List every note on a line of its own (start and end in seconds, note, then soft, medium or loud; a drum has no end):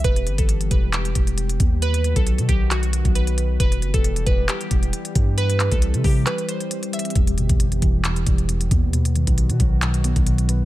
0.00 1.78 G3 medium
0.00 1.79 G4 medium
0.04 0.28 E1 loud
0.04 1.80 E3 medium
0.04 3.56 B3 medium
0.04 0.36 B4 loud
0.04 kick loud
0.04 closed hi-hat medium
0.16 closed hi-hat medium
0.27 0.38 G1 loud
0.27 closed hi-hat medium
0.38 0.70 G1 loud
0.38 0.69 A4 medium
0.38 kick medium
0.38 closed hi-hat medium
0.49 closed hi-hat medium
0.61 closed hi-hat medium
0.71 1.14 E1 loud
0.71 0.90 B4 medium
0.71 kick loud
0.71 closed hi-hat medium
0.93 1.78 G4 medium
0.93 clap loud
0.93 closed hi-hat medium
1.05 closed hi-hat medium
1.15 1.58 E1 loud
1.15 kick medium
1.15 closed hi-hat medium
1.27 closed hi-hat soft
1.38 closed hi-hat medium
1.49 closed hi-hat medium
1.60 2.14 D#2 loud
1.60 kick loud
1.60 closed hi-hat medium
1.82 3.58 D#3 medium
1.82 3.58 F#3 medium
1.82 3.58 F#4 medium
1.82 2.14 B4 loud
1.82 closed hi-hat medium
1.94 closed hi-hat medium
2.04 closed hi-hat medium
2.16 2.40 B1 loud
2.16 2.47 A4 medium
2.16 kick medium
2.16 closed hi-hat medium
2.27 closed hi-hat medium
2.38 2.48 B2 loud
2.38 closed hi-hat medium
2.49 3.03 B1 loud
2.49 2.68 G4 medium
2.49 kick medium
2.49 closed hi-hat medium
2.71 3.13 F#4 medium
2.71 clap loud
2.71 closed hi-hat medium
2.83 closed hi-hat medium
2.93 closed hi-hat medium
3.05 3.58 B1 loud
3.05 kick loud
3.05 closed hi-hat soft
3.15 3.57 B4 medium
3.15 closed hi-hat medium
3.27 closed hi-hat medium
3.38 closed hi-hat medium
3.60 3.84 E1 loud
3.60 8.89 E3 medium
3.60 8.89 G3 medium
3.60 5.36 B3 medium
3.60 5.36 G4 medium
3.60 3.92 B4 medium
3.60 kick loud
3.60 closed hi-hat medium
3.72 closed hi-hat medium
3.82 3.93 F#1 loud
3.82 closed hi-hat medium
3.94 4.25 E1 loud
3.94 4.25 A4 medium
3.94 kick medium
3.94 closed hi-hat medium
4.04 closed hi-hat medium
4.16 closed hi-hat medium
4.26 4.48 E1 loud
4.26 4.45 B4 medium
4.26 kick loud
4.26 closed hi-hat medium
4.49 5.34 G4 medium
4.49 clap loud
4.49 closed hi-hat medium
4.61 closed hi-hat medium
4.71 4.92 E1 loud
4.71 kick medium
4.71 closed hi-hat medium
4.83 closed hi-hat medium
4.93 closed hi-hat medium
5.05 closed hi-hat medium
5.15 5.69 G2 loud
5.15 kick loud
5.15 closed hi-hat medium
5.38 7.14 C4 medium
5.38 8.90 G4 medium
5.38 5.70 B4 loud
5.38 closed hi-hat medium
5.50 closed hi-hat medium
5.60 clap medium
5.60 closed hi-hat medium
5.72 5.95 C2 loud
5.72 6.02 A4 medium
5.72 kick medium
5.72 closed hi-hat medium
5.82 closed hi-hat medium
5.94 6.04 C3 loud
5.94 closed hi-hat medium
6.04 6.26 C3 loud
6.04 6.23 G4 medium
6.04 kick loud
6.04 open hi-hat medium
6.26 6.45 B4 medium
6.26 clap loud
6.26 closed hi-hat medium
6.38 closed hi-hat medium
6.49 6.91 C5 medium
6.49 closed hi-hat medium
6.60 closed hi-hat medium
6.71 closed hi-hat medium
6.83 closed hi-hat medium
6.93 7.12 E5 medium
6.93 closed hi-hat medium
6.99 closed hi-hat medium
7.05 closed hi-hat medium
7.10 closed hi-hat medium
7.15 7.39 E1 loud
7.15 8.04 E2 medium
7.15 10.65 B3 medium
7.15 kick loud
7.15 closed hi-hat medium
7.27 closed hi-hat medium
7.38 7.49 G1 loud
7.38 8.49 B2 medium
7.38 closed hi-hat medium
7.49 7.81 G1 loud
7.49 kick medium
7.49 closed hi-hat medium
7.60 closed hi-hat medium
7.72 closed hi-hat medium
7.82 8.25 E1 loud
7.82 8.93 E3 medium
7.82 kick loud
7.82 closed hi-hat medium
8.04 8.47 E2 medium
8.04 clap loud
8.04 closed hi-hat medium
8.16 closed hi-hat medium
8.27 8.69 E1 loud
8.27 8.94 G3 medium
8.27 kick medium
8.27 closed hi-hat medium
8.38 closed hi-hat soft
8.49 8.93 E2 medium
8.49 closed hi-hat medium
8.61 closed hi-hat medium
8.71 9.25 D#2 loud
8.71 8.94 B3 medium
8.71 kick loud
8.71 closed hi-hat medium
8.93 9.81 B2 medium
8.93 10.65 D#3 medium
8.93 10.65 F#3 medium
8.93 10.65 F#4 medium
8.93 closed hi-hat medium
9.05 closed hi-hat medium
9.15 10.27 D#3 medium
9.15 closed hi-hat medium
9.27 9.51 B1 loud
9.27 kick medium
9.27 closed hi-hat medium
9.38 closed hi-hat medium
9.49 9.59 B2 loud
9.49 closed hi-hat medium
9.60 10.14 B1 loud
9.60 10.65 F#3 medium
9.60 kick loud
9.60 closed hi-hat medium
9.82 10.26 B2 medium
9.82 clap loud
9.82 closed hi-hat medium
9.94 closed hi-hat medium
10.04 10.65 B3 medium
10.04 closed hi-hat medium
10.16 10.65 B1 loud
10.16 kick loud
10.16 closed hi-hat medium
10.27 10.65 B2 medium
10.27 closed hi-hat medium
10.38 closed hi-hat medium
10.49 10.65 B4 medium
10.49 closed hi-hat medium